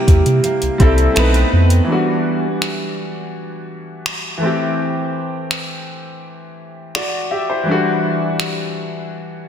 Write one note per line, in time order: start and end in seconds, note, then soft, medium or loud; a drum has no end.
0.00 1.23 C3 medium
0.00 0.78 G3 medium
0.00 0.42 A#3 medium
0.00 0.80 C4 medium
0.00 0.79 E4 medium
0.00 0.81 E4 medium
0.00 1.24 G4 medium
0.00 1.18 A#4 medium
0.08 0.21 E2 loud
0.08 kick medium
0.08 closed hi-hat medium
0.26 0.40 C3 medium
0.26 closed hi-hat soft
0.43 1.15 A#3 medium
0.43 closed hi-hat medium
0.62 0.70 C2 soft
0.62 closed hi-hat soft
0.78 1.08 C2 medium
0.78 1.15 G3 medium
0.78 1.14 C4 medium
0.78 1.23 E4 medium
0.78 1.16 E4 medium
0.78 kick loud
0.78 closed hi-hat medium
0.82 1.17 A4 medium
0.98 closed hi-hat soft
1.14 1.44 B1 loud
1.14 1.73 A3 medium
1.14 2.45 B3 medium
1.14 1.74 C4 medium
1.14 1.74 D#4 medium
1.14 finger snap loud
1.14 closed hi-hat medium
1.19 1.75 B4 medium
1.34 closed hi-hat soft
1.53 1.80 F2 medium
1.70 closed hi-hat medium
1.84 4.35 E3 medium
1.84 1.94 F#3 soft
1.89 4.40 G3 medium
1.89 4.38 D4 medium
1.89 4.39 F#4 medium
2.62 finger snap medium
4.06 finger snap loud
4.38 7.24 E3 medium
4.38 7.26 A3 medium
4.43 7.27 C4 medium
4.43 6.92 G4 medium
5.51 finger snap medium
6.95 7.29 F#4 soft
6.95 7.29 D5 medium
6.95 finger snap loud
7.31 7.48 G4 medium
7.31 7.48 E5 medium
7.50 7.84 E4 medium
7.50 7.83 C5 medium
7.63 9.48 E3 medium
7.63 9.48 G3 medium
7.69 9.09 D4 medium
7.69 9.11 F#4 medium
8.40 finger snap medium